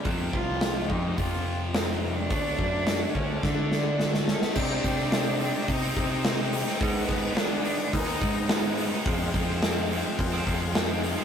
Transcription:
<<
  \new Staff \with { instrumentName = "Tonewheel organ" } { \time 4/4 \key c \minor \tempo 4 = 107 << { r1 | r1 | ees'''1~ | ees'''1 |
c'''1 | } \\ { r1 | r1 | <c'' g''>1 | <ces'' aes''>1 |
<aes' f''>1 | } >> }
  \new Staff \with { instrumentName = "Cello" } { \time 4/4 \key c \minor r8 f'4 ees'8 f'4 c'8. d'16~ | d'4. des'8 d'4. des'16 b16 | d'2 ees'4. r8 | ces'4 d'4 ees'4. r8 |
r1 | }
  \new Staff \with { instrumentName = "Distorted electric guitar" } { \clef bass \time 4/4 \key c \minor <f, c f>2 <f, c f>2 | <d a d'>2 <d a d'>2 | <c g c' ees'>8 <c g c' ees'>16 <g c' ees'>16 <c g c' ees'>8 <c g c' ees'>16 <g c' ees'>8. <c g c' ees'>16 <g c' ees'>16 <c g c' ees'>8 <c g c' ees'>16 <g c' ees'>16 | <aes, ees aes ces' ees'>8 <ees aes ces' ees'>16 <aes ces' ees'>16 <aes, ees aes ces' ees'>8 <ees aes ces' ees'>16 <aes ces' ees'>8. <ees aes ces' ees'>16 <aes ces' ees'>16 <aes, ees aes ces' ees'>8 <ees aes ces' ees'>16 <aes ces' ees'>16 |
<f, c f aes c'>8 <c f aes c'>16 <f aes c'>16 <f, c f aes c'>8 <c f aes c'>16 <f aes c'>8. <c f aes c'>16 <f aes c'>16 <f, c f aes c'>8 <c f aes c'>16 <f aes c'>16 | }
  \new Staff \with { instrumentName = "Distorted electric guitar" } { \clef bass \time 4/4 \key c \minor <f, c f>1 | <d a d'>1 | <c g c' ees'>8. <g c' ees'>16 <c g c' ees'>8 <c g c' ees'>8. <g c' ees'>16 <c g c' ees'>8 <c g c' ees'>16 <g c' ees'>8 <g c' ees'>16 | <aes, ees aes ces' ees'>8. <aes ces' ees'>16 <aes, ees aes ces' ees'>8 <ees aes ces' ees'>8. <aes ces' ees'>16 <ees aes ces' ees'>8 <aes, ees aes ces' ees'>16 <aes ces' ees'>8 <aes ces' ees'>16 |
<f, c f aes c'>8. <f aes c'>16 <f, c f aes c'>8 <c f aes c'>8. <f aes c'>16 <c f aes c'>8 <f, c f aes c'>16 <f aes c'>8 <f aes c'>16 | }
  \new Staff \with { instrumentName = "Picked electric bass" } { \clef bass \time 4/4 \key c \minor f,8 c,4 f,8 f,2 | d,8 fis,4 d,8 d2 | c8 c4. c8 c4. | aes,8 aes,8 r4 ees,8 aes,4. |
f,8 f,4. f,8 f,4. | }
  \new DrumStaff \with { instrumentName = "Drums" } \drummode { \time 4/4 <hho bd>8 bd8 <hho sn>8 bd8 <hho bd>4 <hho sn>4 | <hho bd>8 bd8 <hho sn>8 bd8 <bd sn>8 sn8 sn16 sn16 sn16 sn16 | <cymc bd>8 <hho bd sn>8 <hho sn>8 hho8 <hho bd>8 <hho bd>8 <hho sn>8 hho16 sn16 | <hho bd>8 <hho bd sn>8 <hho sn>8 hho8 <hho bd>8 <hho bd>8 <hho sn>8 hho8 |
<hho bd>8 <hho bd sn>8 <hho sn>8 hho8 <hho bd>8 <hho bd>8 <hho sn>8 hho8 | }
>>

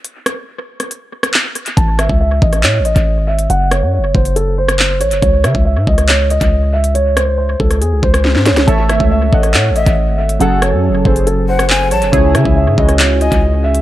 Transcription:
<<
  \new Staff \with { instrumentName = "Flute" } { \time 4/4 \key fis \dorian \tempo 4 = 139 r1 | r1 | r1 | r1 |
r1 | r2 r8 e''8 r4 | r2 r8 fis''8 gis''8 a''8 | r2 r8 gis''8 r4 | }
  \new Staff \with { instrumentName = "Grand piano" } { \time 4/4 \key fis \dorian r1 | a''8 e''8 e''8 dis''8 cis''8 dis''4 e''8 | fis''8 cis''8 cis''8 bis'8 a'8 bis'4 cis''8 | cis''8 e''8 e''8 dis''8 cis''8 dis''4 e''8 |
cis''8 bis'8 bis'8 a'8 gis'8 bis'4 cis''8 | a''8 e''8 e''8 dis''8 cis''8 dis''4 e''8 | fis''8 cis''8 cis''8 bis'8 a'8 bis'4 cis''8 | cis''8 e''8 e''8 dis''8 cis''8 dis''4 e''8 | }
  \new Staff \with { instrumentName = "Synth keys" } { \time 4/4 \key fis \dorian r1 | r1 | r1 | r1 |
r1 | <a a' cis'' e''>4 r8 <a a' cis'' fis''>4. r4 | <fis cis' gis' a'>4 r8 <fis cis' gis' a'>4. r4 | <cis cis' e' gis'>4 r8 <cis cis' e' fis'>4. r4 | }
  \new Staff \with { instrumentName = "808-style bass" } { \clef bass \time 4/4 \key fis \dorian r1 | a,,8 gis,,16 cis,8. a,,8 a,16. a,,16. a,,8 gis,,8. | fis,,8. fis,16. fis,,16. fis,,2 a,,16 fis,,16 | cis,8 cis16 cis,8 gis,16 cis,4~ cis,16 cis,4~ cis,16~ |
cis,4. cis,8 e,16 cis,16 cis,8. gis,16. cis,16. | a,,8 gis,,16 cis,8. a,,8 a,16. a,,16. a,,8 gis,,8. | fis,,8. fis,16. fis,,16. fis,,2 a,,16 fis,,16 | cis,8 cis16 cis,8 gis,16 cis,4~ cis,16 cis,4~ cis,16 | }
  \new DrumStaff \with { instrumentName = "Drums" } \drummode { \time 4/4 hh8 <hh ss>8 r8. <hh ss>16 hh8. <hh ss>16 hc8 hh16 hh16 | <hh bd>8 <hh ss>16 bd16 r8 bd16 <hh ss>16 <hc hh>8 hh16 <hh bd>16 r8. hh16 | hh8 <hh ss>8 r8 bd16 hh16 hh8. <hh ss>16 hc8 hh16 hh16 | <hh bd>8 <hh ss>16 bd16 r8 bd16 <hh ss>16 <hc hh>8 hh16 <hh bd>16 r8. hh16 |
hh8 <hh ss>8 r8 bd16 <hh ss>16 hh8 bd16 <hh ss>16 sn16 sn16 <hh sn>16 <hh sn>16 | <hh bd>8 <hh ss>16 bd16 r8 bd16 <hh ss>16 <hc hh>8 hh16 <hh bd>16 r8. hh16 | hh8 <hh ss>8 r8 bd16 hh16 hh8. <hh ss>16 hc8 hh16 hh16 | <hh bd>8 <hh ss>16 bd16 r8 bd16 <hh ss>16 <hc hh>8 hh16 <hh bd>16 r8. hh16 | }
>>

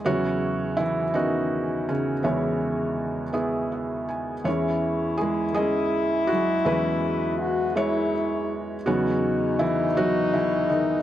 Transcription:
<<
  \new Staff \with { instrumentName = "French horn" } { \time 6/8 \key e \major \tempo 4. = 54 r2. | r2. | e'2.~ | e'4 fis'8 e'4 r8 |
dis'2. | }
  \new Staff \with { instrumentName = "Felt piano" } { \time 6/8 \key e \major << { <fis b cis' fis'>4 <e e'>8 <dis dis'>4 <cis cis'>8 | <cis gis cis'>4. r8 e''8 gis''8 | <e gis cis'>4 <gis gis'>8 <gis cis' gis'>4 <fis fis'>8 | <e gis cis' e'>2 r4 |
<fis fis'>4 <e e'>8 <fis fis'>8 <e e'>8 <dis dis'>8 | } \\ { <b e' cis''>4. <b cis' fis'>4. | <b e' cis''>4. <b e' gis'>4. | <gis e' cis''>4. <gis e' dis''>4. | <gis b'>4. <gis e' cis''>4. |
<b cis' cis''>4. <e b cis''>4. | } >> }
  \new Staff \with { instrumentName = "Felt piano" } { \clef bass \time 6/8 \key e \major <e, cis>2. | <e, e>2. | <e, e>2. | <e, e>2. |
<e, cis>2. | }
>>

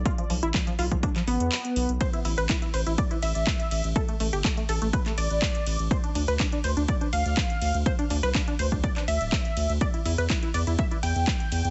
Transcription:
<<
  \new Staff \with { instrumentName = "Synth arpeggio sound" } { \time 4/4 \key a \minor \tempo 4 = 123 f'16 f16 f16 e'16 f16 f16 f'16 f16 d'16 f16 b4~ b16 r16 | c''16 e'16 e'16 b'16 e'16 e'16 c''16 e'16 d''16 e'16 e''4~ e''16 r16 | a'16 a16 a16 g'16 a16 a16 a'16 a16 b'16 a16 d''4~ d''16 r16 | c''16 d'16 d'16 b'16 d'16 d'16 c''16 d'16 d''16 d'16 f''4~ f''16 r16 |
c''16 d'16 d'16 b'16 d'16 d'16 c''16 d'16 d''16 d'16 e''4~ e''16 r16 | d''16 e'16 e'16 b'16 e'16 e'16 d''16 e'16 e''16 e'16 g''4~ g''16 r16 | }
  \new Staff \with { instrumentName = "Sub bass" } { \clef bass \time 4/4 \key a \minor r8 b,,16 a,,16 r8 b,,16 b,,16 r8 a,,16 e,16 r8 b,,16 b,,16 | r8 a,,16 a,,16 r8 a,,16 a,,16 r8 a,,16 a,,16 r8 a,,16 a,,16 | r8 a,,16 g,,16 r8 a,,16 a,,16 r8 a,,16 a,,16 r8 a,,16 a,,16 | r8 d,16 d,16 r8 d,16 d,16 r8 d,16 d,16 r8 d,16 d,16 |
r8 d,16 c,16 r8 d,16 d,16 r8 d,16 d,,16 r8 d,16 d,16 | r8 e,16 e,16 r8 e,16 e,16 r8 e,16 e,16 r8 e,16 e,16 | }
  \new DrumStaff \with { instrumentName = "Drums" } \drummode { \time 4/4 <hh bd>16 hh16 hho16 hh16 <hc hh bd>16 hh16 hho16 <hh bd>16 <hh bd>16 <hc hh>16 hho16 hh16 <hc hho>16 hh16 hho16 hh16 | <hh bd cymr>16 hh16 <hho cymr>16 hh16 <hc hh bd cymr>16 hh16 <hho cymr>16 hh16 <hh bd cymr>16 hh16 <hho cymr>16 hh16 <hc hh bd cymr>16 hh16 <hho cymr>16 hh16 | <hh bd cymr>16 hh16 <hho cymr>16 hh16 <hc hh bd cymr>16 hh16 <hho cymr>16 hh16 <hh bd cymr>16 <hc hh>16 <hho cymr>16 hh16 <hc hho bd cymr>16 hh16 <hho cymr>16 hh16 | <hh bd cymr>16 hh16 <hho cymr>16 hh16 <hc hh bd cymr>16 hh16 <hho cymr>16 hh16 <hh bd cymr>16 hh16 <hho cymr>16 hh16 <hc hh bd cymr>16 hh16 <hho cymr>16 hh16 |
<hh bd cymr>16 hh16 <hho cymr>16 hh16 <hc hh bd cymr>16 hh16 <hho cymr>16 <hh bd>16 <hh bd cymr>16 <hc hh>16 <hho cymr>16 hh16 <hc hho bd cymr>16 hh16 <hho cymr>16 hh16 | <hh bd cymr>16 hh16 <hho cymr>16 hh16 <hc hh bd cymr>16 hh16 <hho cymr>16 hh16 <hh bd cymr>16 hh16 <hho cymr>16 hh16 <hc hh bd cymr>16 hh16 <hho cymr>16 hh16 | }
>>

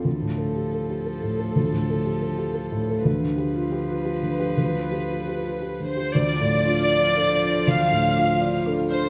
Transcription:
<<
  \new Staff \with { instrumentName = "Violin section" } { \time 3/4 \key d \dorian \tempo 4 = 119 a'2.~ | a'2. | b'2.~ | b'2~ b'8 c''8 |
d''2. | f''2 r8 c''8 | }
  \new Staff \with { instrumentName = "Felt piano" } { \time 3/4 \key d \dorian \tuplet 3/2 { d,8 a,8 a'8 g'8 a'8 g'8 a'8 a,8 a'8 } | \tuplet 3/2 { d,8 a,8 a'8 g'8 a'8 g'8 a'8 a,8 a'8 } | \tuplet 3/2 { d,8 d8 g'8 f'8 g'8 f'8 g'8 d8 g'8 } | \tuplet 3/2 { d,8 d8 g'8 f'8 g'8 f'8 g'8 d8 g'8 } |
d,8 a,8 f'8 d''8 a'8 d'8 | d,8 a,8 f'8 d''8 a'8 d'8 | }
  \new Staff \with { instrumentName = "Marimba" } { \time 3/4 \key d \dorian r2. | r2. | r2. | r2. |
d'16 f'16 r8 d'16 f'16 r16 f'16 d'16 f'16 f'16 a'16 | d'16 f'16 r8 d'16 f'16 d''16 f'16 d'16 f'16 f'16 a'16 | }
  \new Staff \with { instrumentName = "Cello" } { \clef bass \time 3/4 \key d \dorian f2.~ | f2. | f2.~ | f2~ f8 r8 |
f2.~ | f2. | }
>>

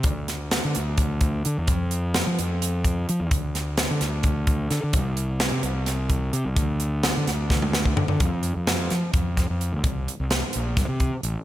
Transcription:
<<
  \new Staff \with { instrumentName = "Fingered electric bass" } { \clef bass \time 7/8 \key c \mixolydian \tempo 4 = 128 d,4~ d,16 d16 d,4. d16 e,16 | f,4~ f,16 f16 f,4. f16 e,16 | d,4~ d,16 d16 d,4. d16 d16 | c,4~ c,16 c16 c,4. c16 c,16 |
d,4~ d,16 d16 d,4. d16 d16 | f,8. f,8. f16 r16 f,8. f,8 d,16 | c,8 r16 c,8 r16 bes,,8 g,16 c8 r16 a,,16 r16 | }
  \new DrumStaff \with { instrumentName = "Drums" } \drummode { \time 7/8 <hh bd>8 <hh sn>8 <hh sn>8 hh8 <hh bd>8 <hh bd>8 hh8 | <hh bd>8 hh8 <hh sn>8 hh8 hh8 <hh bd>8 hh8 | <hh bd>8 <hh sn>8 <hh sn>8 <hh sn>8 <hh bd>8 <hh bd>8 <hh sn>8 | <hh bd>8 hh8 <hh sn>8 hh8 <hh sn>8 <hh bd>8 hh8 |
<hh bd>8 hh8 <hh sn>8 <hh sn>8 <bd sn>16 tommh16 sn16 bd16 tomfh16 tomfh16 | <hh bd>8 hh8 <hh sn>8 <hh sn>8 <hh bd>8 <hh bd sn>8 hh8 | <hh bd>8 hh8 <hh sn>8 hh8 <hh bd sn>8 <hh bd>8 hh8 | }
>>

